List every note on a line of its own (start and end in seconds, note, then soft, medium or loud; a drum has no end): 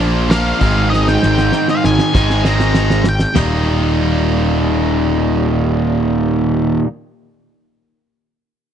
0.00 0.52 A#1 medium
0.00 0.27 A#2 medium
0.00 0.29 F3 medium
0.00 0.29 A#3 medium
0.00 0.28 D4 medium
0.00 0.28 F4 medium
0.00 open hi-hat soft
0.28 0.58 A#2 medium
0.28 0.59 F3 medium
0.28 0.59 A#3 medium
0.28 0.59 D4 medium
0.28 0.60 F4 medium
0.28 0.90 F5 medium
0.28 snare medium
0.28 open hi-hat medium
0.59 1.16 G#1 medium
0.59 2.11 G#2 medium
0.59 2.12 D#3 medium
0.59 2.12 G#3 medium
0.59 2.12 C4 medium
0.59 2.13 D#4 medium
0.59 kick medium
0.59 open hi-hat soft
0.90 1.05 D#5 medium
0.90 snare medium
1.08 1.67 G5 medium
1.08 snare soft
1.23 1.51 G#1 medium
1.23 snare medium
1.38 snare soft
1.52 snare medium
1.68 1.85 F5 medium
1.68 snare soft
1.84 1.98 G#1 medium
1.84 2.43 G#5 medium
1.84 snare medium
1.99 snare medium
2.13 3.24 G#1 medium
2.13 2.42 G#2 medium
2.13 2.43 D#3 medium
2.13 2.43 G#3 medium
2.13 2.43 C4 medium
2.13 2.42 D#4 medium
2.13 kick loud
2.13 snare medium
2.30 snare medium
2.43 3.05 G#2 medium
2.43 3.04 D#3 medium
2.43 3.04 G#3 medium
2.43 3.04 C4 medium
2.43 3.03 D#4 medium
2.43 snare medium
2.48 3.06 A#5 medium
2.60 snare medium
2.74 snare medium
2.90 snare medium
3.04 snare medium
3.09 3.37 G5 medium
3.20 snare medium
3.34 6.78 D#1 medium
3.34 6.84 D#2 medium
3.34 6.86 A#2 medium
3.34 6.86 D#3 medium
3.34 6.87 G3 medium
3.34 6.88 A#3 medium
3.34 snare medium
3.34 floor tom medium
3.34 splash medium
3.38 6.88 D#4 medium